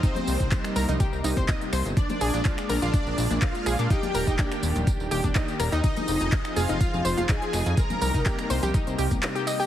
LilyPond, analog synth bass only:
\new Staff \with { instrumentName = "Analog synth bass" } { \clef bass \time 4/4 \key c \minor \tempo 4 = 124 r8 c,16 c,16 r8 c,16 c,16 r16 c,16 c,16 c,16 r8 c,16 g,,16 | r8 bes,,16 bes,,16 r8 bes,,16 bes,,16 r16 bes,,16 bes,,16 bes,,16 r8 bes,,16 bes,16 | r8 ees,,16 ees,,16 r8 ees,,16 ees,,16 r16 ees,,16 ees,,16 ees,,16 r8 ees,,16 ees,16 | r8 f,,16 f,,16 r8 f,,16 f,,16 r16 f,,16 f,,16 f,,16 r8 f,,16 f,16 |
r8 c,16 c,16 r8 c,16 c,16 r16 c,16 c,16 c,16 r4 | }